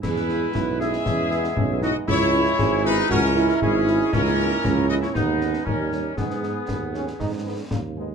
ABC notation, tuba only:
X:1
M:2/4
L:1/8
Q:1/4=117
K:Elyd
V:1 name="Tuba" clef=bass
E,,2 B,,,2 | E,,2 B,,,2 | C,,2 G,,,2 | C,,2 G,,,2 |
C,,2 C,,2 | D,,2 D,,2 | G,,2 D,,2 | G,,2 D,,2 |]